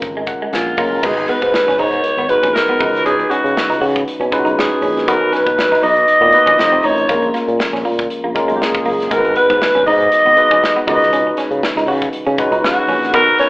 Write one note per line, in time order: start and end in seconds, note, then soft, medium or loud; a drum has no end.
0.00 0.23 G#1 loud
0.00 0.77 G#3 medium
0.00 0.78 C#4 medium
0.00 0.78 F4 medium
0.00 0.78 A#4 medium
0.00 kick medium
0.00 closed hi-hat medium
0.00 muted conga medium
0.17 0.24 G#3 medium
0.27 0.51 F#5 medium
0.27 muted clean electric guitar stroke soft
0.27 kick medium
0.27 closed hi-hat medium
0.27 low conga medium
0.42 0.49 G#3 medium
0.52 0.74 A#1 medium
0.52 1.06 F4 medium
0.52 0.77 G#5 medium
0.52 snare medium
0.52 closed hi-hat medium
0.52 high conga medium
0.77 0.99 F#1 loud
0.77 0.97 G#3 medium
0.77 0.87 A#3 medium
0.77 0.98 C#4 medium
0.77 0.97 F4 medium
0.77 0.98 A#4 loud
0.77 1.01 A#5 medium
0.77 kick medium
0.77 open hi-hat medium
0.77 high conga medium
1.03 1.24 G#1 loud
1.03 1.79 G#3 medium
1.03 1.12 G#3 medium
1.03 1.79 B3 medium
1.03 1.79 D#4 medium
1.03 1.79 F#4 medium
1.03 1.30 G#4 loud
1.03 1.79 B4 medium
1.03 kick loud
1.03 crash medium
1.03 muted conga soft
1.17 muted clean electric guitar stroke soft
1.17 closed hi-hat soft
1.28 1.38 B3 medium
1.28 1.80 B4 loud
1.28 closed hi-hat medium
1.42 1.52 G#2 medium
1.42 kick medium
1.42 closed hi-hat soft
1.54 muted clean electric guitar stroke soft
1.54 snare loud
1.54 high conga medium
1.67 1.77 G#1 medium
1.67 1.75 C#4 medium
1.67 snare soft
1.78 2.00 G#2 loud
1.78 1.88 D#4 medium
1.78 2.31 C#5 loud
1.78 open hi-hat medium
1.78 muted conga soft
1.78 low conga medium
1.93 closed hi-hat soft
2.04 closed hi-hat medium
2.04 muted conga medium
2.17 2.27 G#1 medium
2.17 2.26 B3 medium
2.17 closed hi-hat soft
2.29 2.79 G#3 medium
2.29 2.80 B3 medium
2.29 2.80 D#4 medium
2.29 2.81 F#4 medium
2.29 2.56 B4 medium
2.29 2.81 B4 medium
2.29 muted clean electric guitar stroke soft
2.29 closed hi-hat medium
2.43 2.53 A#1 medium
2.43 2.50 C#4 medium
2.43 kick medium
2.43 closed hi-hat soft
2.54 3.05 A#4 loud
2.54 muted clean electric guitar stroke soft
2.54 snare loud
2.54 high conga medium
2.69 2.76 B3 medium
2.80 3.23 C#2 loud
2.80 3.62 G#3 medium
2.80 3.62 C#4 medium
2.80 2.89 D#4 medium
2.80 3.62 D#4 medium
2.80 3.62 F#4 medium
2.80 3.62 B4 medium
2.80 kick loud
2.80 open hi-hat medium
2.80 high conga medium
2.95 snare soft
2.95 closed hi-hat medium
2.95 high conga soft
3.05 3.14 C#4 medium
3.05 3.31 G#4 loud
3.05 closed hi-hat medium
3.05 muted conga soft
3.20 muted clean electric guitar stroke medium
3.20 closed hi-hat soft
3.30 3.39 C#4 medium
3.30 4.06 F#4 medium
3.30 closed hi-hat medium
3.44 3.54 C#3 medium
3.44 closed hi-hat soft
3.57 muted clean electric guitar stroke soft
3.57 snare loud
3.57 high conga medium
3.70 3.79 C#2 loud
3.70 3.77 D#4 medium
3.70 snare soft
3.70 closed hi-hat soft
3.81 4.02 C#3 loud
3.81 3.90 F#4 medium
3.81 open hi-hat medium
3.81 muted conga soft
3.81 low conga medium
3.96 kick medium
3.96 closed hi-hat medium
4.07 closed hi-hat medium
4.07 muted conga medium
4.20 4.30 B2 medium
4.20 4.28 C#4 medium
4.20 closed hi-hat soft
4.32 4.89 G#3 medium
4.32 4.89 C#4 medium
4.32 4.90 D#4 medium
4.32 4.39 F4 medium
4.32 4.90 B4 loud
4.32 muted clean electric guitar stroke soft
4.32 kick medium
4.32 closed hi-hat medium
4.32 low conga medium
4.39 4.93 F#4 medium
4.45 4.55 B1 medium
4.45 4.52 D#4 medium
4.45 closed hi-hat soft
4.58 5.09 G#4 medium
4.58 snare loud
4.58 high conga medium
4.82 5.08 A#1 medium
4.82 4.91 C#4 medium
4.82 open hi-hat medium
4.82 high conga medium
4.97 snare soft
4.97 closed hi-hat medium
5.07 5.29 B1 loud
5.07 5.83 F#3 medium
5.07 5.83 B3 medium
5.07 5.16 B3 medium
5.07 5.83 D#4 medium
5.07 5.84 F#4 medium
5.07 5.35 A#4 medium
5.07 5.84 B4 medium
5.07 kick loud
5.07 closed hi-hat loud
5.21 muted clean electric guitar stroke soft
5.33 5.41 C#4 medium
5.33 5.84 B4 loud
5.33 snare soft
5.33 closed hi-hat medium
5.46 5.56 B2 medium
5.46 kick medium
5.46 closed hi-hat soft
5.58 muted clean electric guitar stroke soft
5.58 snare loud
5.58 high conga medium
5.72 5.79 D#4 medium
5.72 snare soft
5.72 closed hi-hat soft
5.82 6.04 B1 medium
5.82 5.92 D#4 medium
5.82 6.87 D#5 loud
5.82 open hi-hat medium
5.82 muted conga soft
5.82 low conga medium
5.97 closed hi-hat medium
6.08 closed hi-hat medium
6.08 muted conga medium
6.21 6.31 A#2 loud
6.21 6.29 B3 medium
6.21 closed hi-hat soft
6.33 6.59 A#3 medium
6.33 6.59 B3 medium
6.33 6.58 D#4 medium
6.33 6.59 F#4 medium
6.33 6.59 B4 medium
6.33 muted clean electric guitar stroke soft
6.33 closed hi-hat medium
6.46 6.57 A#1 medium
6.46 6.54 C#4 medium
6.46 kick medium
6.46 closed hi-hat soft
6.58 6.80 F1 loud
6.58 7.00 A3 medium
6.58 7.00 C4 medium
6.58 7.00 D#4 medium
6.58 7.00 F4 medium
6.58 7.00 C5 medium
6.58 muted clean electric guitar stroke soft
6.58 snare medium
6.58 high conga medium
6.72 6.80 C4 medium
6.72 closed hi-hat soft
6.83 7.05 A1 medium
6.83 6.93 D#4 medium
6.83 7.35 C#5 loud
6.83 open hi-hat medium
6.83 high conga medium
6.98 closed hi-hat medium
6.98 high conga soft
7.09 7.30 A#1 loud
7.09 7.85 G#3 medium
7.09 7.18 A#3 loud
7.09 7.85 A#3 medium
7.09 7.86 C#4 medium
7.09 7.86 F4 medium
7.09 7.86 A#4 medium
7.09 kick loud
7.09 closed hi-hat loud
7.09 muted conga soft
7.22 muted clean electric guitar stroke soft
7.22 closed hi-hat soft
7.34 7.43 A#3 medium
7.34 snare soft
7.34 closed hi-hat medium
7.48 7.58 A#2 medium
7.48 closed hi-hat soft
7.59 muted clean electric guitar stroke soft
7.59 snare loud
7.59 high conga medium
7.73 7.83 A#1 medium
7.73 7.81 C#4 medium
7.73 snare soft
7.85 8.06 A#2 medium
7.85 7.94 A#3 medium
7.85 open hi-hat medium
7.85 muted conga soft
7.85 low conga medium
7.99 kick loud
7.99 closed hi-hat soft
8.10 closed hi-hat medium
8.10 muted conga medium
8.24 8.34 A#1 medium
8.24 8.31 A#3 medium
8.35 8.92 G#3 loud
8.35 8.92 A#3 medium
8.35 8.93 C#4 medium
8.35 8.93 F4 medium
8.35 8.93 A#4 medium
8.35 muted clean electric guitar stroke soft
8.35 kick medium
8.35 closed hi-hat medium
8.35 low conga medium
8.48 8.59 B1 medium
8.48 8.56 G#3 medium
8.48 closed hi-hat soft
8.56 8.64 G4 medium
8.61 9.13 G#4 medium
8.61 snare loud
8.61 high conga medium
8.74 kick medium
8.74 closed hi-hat soft
8.85 9.07 F#1 medium
8.85 8.94 A#3 medium
8.85 open hi-hat medium
8.85 high conga medium
9.00 snare soft
9.00 closed hi-hat medium
9.00 high conga soft
9.10 9.32 G#1 loud
9.10 9.86 G#3 medium
9.10 9.19 G#3 medium
9.10 9.87 B3 medium
9.10 9.87 D#4 medium
9.10 9.87 F#4 medium
9.10 9.36 A#4 medium
9.10 9.18 A#4 medium
9.10 kick loud
9.10 closed hi-hat loud
9.18 9.90 B4 medium
9.25 muted clean electric guitar stroke soft
9.25 closed hi-hat soft
9.36 9.45 B3 medium
9.36 9.83 B4 loud
9.36 closed hi-hat medium
9.50 9.60 G#2 loud
9.50 kick medium
9.50 closed hi-hat soft
9.61 muted clean electric guitar stroke soft
9.61 snare loud
9.61 high conga medium
9.75 9.85 G#1 loud
9.75 9.82 C#4 medium
9.75 closed hi-hat soft
9.87 10.08 G#2 loud
9.87 9.96 D#4 medium
9.87 10.83 D#5 loud
9.87 open hi-hat medium
9.87 muted conga medium
9.87 low conga medium
10.00 closed hi-hat soft
10.12 closed hi-hat medium
10.12 muted conga medium
10.25 10.35 G#1 medium
10.25 10.33 B3 medium
10.25 closed hi-hat soft
10.36 10.86 G#3 medium
10.36 10.87 B3 medium
10.36 10.86 D#4 medium
10.36 10.87 F#4 medium
10.36 10.88 B4 medium
10.36 muted clean electric guitar stroke soft
10.36 closed hi-hat medium
10.51 10.61 B1 medium
10.51 10.58 C#4 medium
10.51 kick medium
10.51 closed hi-hat soft
10.63 muted clean electric guitar stroke soft
10.63 snare loud
10.63 high conga medium
10.76 10.83 B3 medium
10.87 11.30 C#2 medium
10.87 11.68 G#3 medium
10.87 11.68 C#4 medium
10.87 10.96 D#4 medium
10.87 11.68 D#4 medium
10.87 11.69 F#4 medium
10.87 10.94 A#4 medium
10.87 11.35 D#5 medium
10.87 kick medium
10.87 open hi-hat medium
10.87 high conga medium
10.94 11.72 B4 medium
11.02 snare soft
11.02 closed hi-hat medium
11.13 11.21 C#4 loud
11.13 closed hi-hat medium
11.13 muted conga soft
11.27 muted clean electric guitar stroke medium
11.37 11.46 C#4 medium
11.37 snare soft
11.37 closed hi-hat medium
11.51 11.61 C#3 medium
11.51 closed hi-hat soft
11.63 muted clean electric guitar stroke soft
11.63 snare loud
11.63 high conga medium
11.76 11.86 C#2 medium
11.76 11.84 D#4 medium
11.76 snare soft
11.87 12.09 C#3 loud
11.87 11.97 F#4 medium
11.87 open hi-hat medium
11.87 muted conga soft
11.87 low conga medium
12.02 kick medium
12.02 closed hi-hat medium
12.13 muted fretless electric bass stroke soft
12.13 closed hi-hat medium
12.13 muted conga medium
12.27 12.36 C#3 medium
12.27 12.34 C#4 medium
12.27 closed hi-hat soft
12.38 12.95 G#3 medium
12.38 12.96 C#4 medium
12.38 12.96 D#4 medium
12.38 12.96 F#4 medium
12.38 12.96 B4 loud
12.38 muted clean electric guitar stroke soft
12.38 kick medium
12.38 closed hi-hat medium
12.38 low conga medium
12.51 12.61 C#2 medium
12.51 12.59 D#4 medium
12.51 closed hi-hat medium
12.63 13.10 F#4 medium
12.63 snare loud
12.63 high conga medium
12.77 closed hi-hat soft
12.88 13.14 A#1 medium
12.88 12.97 C#4 medium
12.88 open hi-hat medium
12.88 high conga medium
13.02 snare soft
13.02 closed hi-hat medium
13.02 high conga soft
13.13 13.35 B1 loud
13.13 13.49 B3 medium
13.13 13.22 B3 loud
13.13 13.49 D#4 medium
13.13 13.49 F#4 medium
13.13 13.49 A#4 medium
13.13 13.38 A#4 loud
13.13 13.49 B4 loud
13.13 kick loud
13.13 closed hi-hat medium
13.13 muted conga soft
13.27 muted clean electric guitar stroke soft
13.27 closed hi-hat soft
13.39 13.47 C#4 medium
13.39 13.49 C#5 loud
13.39 snare soft
13.39 closed hi-hat medium